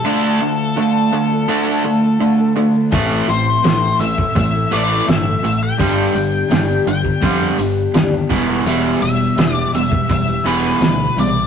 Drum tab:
HH |----------------|o-o-o-o-o-o-o-o-|o-o-o-o-o-o-o-o-|o-o-o-o-o-o-o-o-|
SD |----------------|----o-------o---|----o-------o---|----o-------o---|
BD |----------------|o------oo-------|o------oo-----o-|-------oo-------|